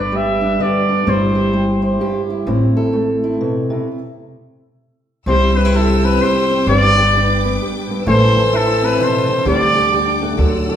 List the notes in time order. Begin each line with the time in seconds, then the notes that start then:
Already playing: G1 G2 B3 D4 B4
0.00 D5
0.12 G3 G4
0.16 E5
0.41 D4
0.59 D3 G4 B4 D5
0.89 D4
1.06 G1 G2 G3 C4 E4 G4 C5
1.35 E4 G4
1.53 G3 G4
1.82 E4 C5
2.00 G2 G4
2.30 E4
2.47 A1 A2 C4 E4
2.77 E4 A4
2.93 A3 A4
3.24 E4
3.41 B2 A4
3.70 C3 E4
5.26 C2 C3 G3 C4 E4 G4 C5 G5 E6
5.56 G3 D4 B4
5.65 E4
5.75 E4 G4 A4
6.04 C4 B4
6.22 G3 G4 C5
6.50 C4
6.67 G1 G2 G3 B4 D5 D6
6.97 G3 D4
7.15 D4 B4
7.44 B3
7.62 G3
7.90 G2 B3
8.04 A1 A2 E3 C5 A5 E6
8.08 A4 C5
8.36 E3 E4
8.53 E4 A4
8.81 C4 B4
8.97 B2 E3
9.04 C5
9.27 C3 C4
9.45 D2 D3 G3 G4 A4 D5 G5 D6
9.75 G3 G4
9.93 D4 G4
10.21 A3 D4
10.37 D2 D3 F#3 A4 D5 F#5 E6
10.69 A3 E4